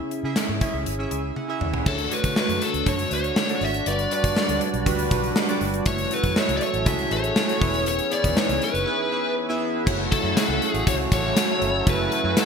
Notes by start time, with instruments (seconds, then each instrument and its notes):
Already playing: synth keys C#3 C#4 E4 G#4 E5
0.11 closed hi-hat
0.23 fingered electric bass C#3, synth keys C#4 E4 G#4 E5
0.36 snare, closed hi-hat
0.49 fingered electric bass G#2
0.61 synth keys C#4 E4 G#4 E5, kick, closed hi-hat
0.74 fingered electric bass C#2
0.86 fingered electric bass G#1, closed hi-hat
0.99 synth keys C#4 E4 G#4 E5
1.11 fingered electric bass C#2, synth keys G#5, closed hi-hat
1.36 synth keys F#5, high tom
1.48 synth keys C#4 E4 G#4 E5
1.61 fingered electric bass D#2, mid tom
1.70 synth keys E5, floor tom
1.86 fingered electric bass D2, synth keys D3 A3 D4 F#4 C#5, analog synth pad D3 A3 D4 F#4, lead electric guitar A4, kick, crash
1.98 closed hi-hat
2.11 synth keys A3 D4 F#4 C#5, lead electric guitar B4, closed hi-hat
2.24 fingered electric bass D3, kick, closed hi-hat
2.36 synth keys A3 D4 F#4 C#5, lead electric guitar B4, snare
2.49 fingered electric bass F#2, closed hi-hat
2.62 lead electric guitar A4, closed hi-hat
2.74 fingered electric bass D2, closed hi-hat
2.86 fingered electric bass F#2, synth keys A3 D4 F#4 C#5, lead electric guitar C#5, kick, closed hi-hat
2.99 closed hi-hat
3.11 fingered electric bass D2, synth keys A3 D4 F#4 C#5, lead electric guitar C#5, closed hi-hat
3.24 closed hi-hat
3.36 snare
3.49 synth keys A3 D4 F#4 D5, closed hi-hat
3.61 fingered electric bass G#1, lead electric guitar E5, open hi-hat
3.74 closed hi-hat
3.86 fingered electric bass G1, synth keys G2 G3 D4 F#4 B4, analog synth pad G3 D4 B4, lead electric guitar D5, closed hi-hat
3.99 closed hi-hat
4.11 synth keys G3 D4 F#4 B4, lead electric guitar D5, closed hi-hat
4.24 fingered electric bass G2, kick, closed hi-hat
4.36 synth keys G3 D4 F#4 C#5, snare
4.43 synth keys D5
4.49 fingered electric bass D2, closed hi-hat
4.61 closed hi-hat
4.74 fingered electric bass B1, closed hi-hat
4.86 fingered electric bass D2, synth keys G3 D4 F#4 B4, kick, closed hi-hat
4.99 closed hi-hat
5.11 fingered electric bass B1, synth keys G3 D4 F#4 B4, kick, closed hi-hat
5.24 closed hi-hat
5.36 snare
5.48 synth keys G3 D4 F#4 D5, closed hi-hat
5.61 fingered electric bass G1, open hi-hat
5.74 closed hi-hat
5.86 fingered electric bass F#1, analog synth pad F#3 C#4 E4 A4, synth keys A3 E4 F#4 C#5, lead electric guitar C#5, kick, closed hi-hat
5.98 closed hi-hat
6.11 synth keys A3 E4 F#4 C#5, lead electric guitar B4, closed hi-hat
6.23 fingered electric bass F#2, kick, closed hi-hat
6.36 synth keys A3 E4 F#4 E5, lead electric guitar C#5, snare
6.49 fingered electric bass C#2, closed hi-hat
6.57 lead electric guitar D5, closed hi-hat
6.63 lead electric guitar C#5
6.74 fingered electric bass A1, closed hi-hat
6.85 fingered electric bass C#2, synth keys A3 E4 F#4 G#4, lead electric guitar E5, kick, closed hi-hat
6.99 closed hi-hat
7.10 fingered electric bass A1, synth keys A3 E4 F#4 A4, lead electric guitar C#5, closed hi-hat
7.24 closed hi-hat
7.36 snare
7.48 synth keys A3 E4 F#4 C#5, closed hi-hat
7.60 fingered electric bass E1, synth keys E3 B3 E4 G#4 C#5, analog synth pad E3 G#4 B4, kick, open hi-hat
7.74 closed hi-hat
7.86 lead electric guitar C#5, closed hi-hat
7.99 closed hi-hat
8.11 synth keys B3 E4 G#4 C#5, lead electric guitar D5, closed hi-hat
8.24 fingered electric bass E2, kick, closed hi-hat
8.36 synth keys B3 D#4 G#4 C#5, lead electric guitar C#5, snare
8.42 synth keys E4
8.49 fingered electric bass C#2, closed hi-hat
8.62 lead electric guitar B4, closed hi-hat
8.74 fingered electric bass F#1, closed hi-hat
8.86 synth keys B3 E4 G#4 B4
9.11 synth keys B3 E4 G#4 E5
9.49 synth keys B3 E4 G#4 E5
9.86 fingered electric bass F#1, horn section C#3 F#3 A3 F#4, analog synth pad F#3 C#4 E4 A4, synth keys A3 E4 F#4 C#5, kick, crash
10.12 lead electric guitar A4, kick, closed hi-hat
10.24 fingered electric bass F#2, synth keys A3 E4 F#4 E5
10.36 synth keys A3 E4 F#4 C#5, lead electric guitar A4, snare, closed hi-hat, tambourine
10.48 fingered electric bass C#2
10.62 closed hi-hat
10.71 fingered electric bass A1, lead electric guitar G#4, closed hi-hat
10.87 fingered electric bass C#2, lead electric guitar C#5, kick, closed hi-hat
11.12 fingered electric bass A1, lead electric guitar C#5, kick, closed hi-hat
11.37 snare, closed hi-hat, tambourine
11.61 fingered electric bass G1, closed hi-hat
11.86 fingered electric bass F#1, synth keys A3 E4 F#4 E5, lead electric guitar B4, kick, closed hi-hat
12.12 closed hi-hat
12.24 fingered electric bass F#2, synth keys A3 E4 F#4 C#5
12.36 synth keys A3 E4 F#4 E5, lead electric guitar A4, snare, closed hi-hat, tambourine